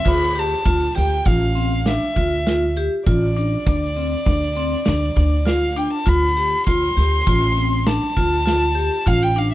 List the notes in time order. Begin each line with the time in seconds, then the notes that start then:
0.05 D2 F4 B5, kick, crash
0.35 G4 A5, closed hi-hat
0.65 D2 F4, kick, closed hi-hat
0.96 D2 G4 G5, snare, closed hi-hat
1.25 A1 F4 F5, kick, closed hi-hat
1.55 C4, closed hi-hat
1.86 D4 E5, snare, closed hi-hat
2.16 D2 F4, kick, closed hi-hat
2.47 F4, snare, closed hi-hat
2.77 G4, closed hi-hat
3.06 A1 F4 D5, kick, closed hi-hat
3.36 D4, closed hi-hat
3.66 D2 D4, kick, closed hi-hat
3.96 C4, closed hi-hat
4.26 D2 D4, kick, closed hi-hat
4.56 C4, closed hi-hat
4.86 D2 D4, snare, closed hi-hat
5.16 D2 D4, kick, closed hi-hat
5.46 F4 F5, snare, closed hi-hat
5.76 D4 G5, closed hi-hat
5.93 A5
6.06 D2 F4 B5, kick, closed hi-hat
6.37 G4, closed hi-hat
6.67 D2 F4 C6, kick, closed hi-hat
6.97 D2 G4, snare, closed hi-hat
7.26 A1 F4, kick, closed hi-hat
7.57 C4, closed hi-hat
7.87 D4 A5, snare, closed hi-hat
8.17 D2 F4, kick, snare, closed hi-hat
8.46 F4, snare, closed hi-hat
8.75 G4, closed hi-hat
9.06 A1 F4 F5, kick, closed hi-hat
9.23 G5
9.36 D4 F5, closed hi-hat